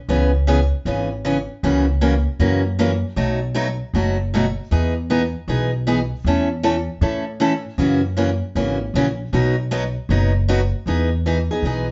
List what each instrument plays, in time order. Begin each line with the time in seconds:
0.09 upright bass C#2, steel-string acoustic guitar C#3 E3 B3 C#4 G#4
0.47 steel-string acoustic guitar C#3 E3 B3 C#4 G#4
0.85 upright bass G#1, steel-string acoustic guitar C#3 E3 B3 C#4 G#4
1.25 steel-string acoustic guitar C#3 E3 B3 C#4 G#4
1.63 upright bass C#2, steel-string acoustic guitar C#3 E3 A#3 C#4 F#4
2.01 steel-string acoustic guitar C#3 E3 A#3 C#4 F#4
2.39 upright bass F#2, steel-string acoustic guitar C#3 E3 A#3 C#4 F#4
2.79 steel-string acoustic guitar C#3 E3 A#3 C#4 F#4
3.16 upright bass B1, steel-string acoustic guitar B2 F#3 A3 D#4 F#4
3.54 steel-string acoustic guitar B2 F#3 A3 D#4 F#4
3.94 upright bass F#1, steel-string acoustic guitar B2 F#3 A3 D#4 F#4
4.34 steel-string acoustic guitar B2 F#3 A3 D#4 F#4
4.71 upright bass E2, steel-string acoustic guitar E3 B3 D#4 G#4
5.10 steel-string acoustic guitar E3 B3 D#4 G#4
5.48 upright bass B1, steel-string acoustic guitar E3 B3 D#4 G#4
5.87 steel-string acoustic guitar E3 B3 D#4 G#4
6.24 upright bass E2, steel-string acoustic guitar E3 A3 C#4 E4 A4
6.63 steel-string acoustic guitar E3 A3 C#4 E4 A4
7.01 upright bass A2, steel-string acoustic guitar E3 A3 C#4 E4 A4
7.40 steel-string acoustic guitar E3 A3 C#4 E4 A4
7.78 upright bass F#2, steel-string acoustic guitar C#3 E3 A#3 C#4 F#4
8.17 steel-string acoustic guitar C#3 E3 A#3 C#4 F#4
8.55 upright bass G#1, steel-string acoustic guitar C#3 E3 A#3 C#4 F#4
8.94 upright bass A#1, steel-string acoustic guitar C#3 E3 A#3 C#4 F#4
9.33 upright bass B1, steel-string acoustic guitar B2 F#3 B3 D#4 F#4
9.71 steel-string acoustic guitar B2 F#3 B3 D#4 F#4
10.09 upright bass F#1, steel-string acoustic guitar B2 F#3 B3 D#4 F#4
10.48 steel-string acoustic guitar B2 F#3 B3 D#4 F#4
10.86 upright bass E2, steel-string acoustic guitar E3 B3 D#4 G#4
11.26 steel-string acoustic guitar E3 B3 D#4 G#4
11.51 steel-string acoustic guitar B3 D#4 G#4
11.63 upright bass B1, steel-string acoustic guitar E3 B3 D#4
11.67 steel-string acoustic guitar G#4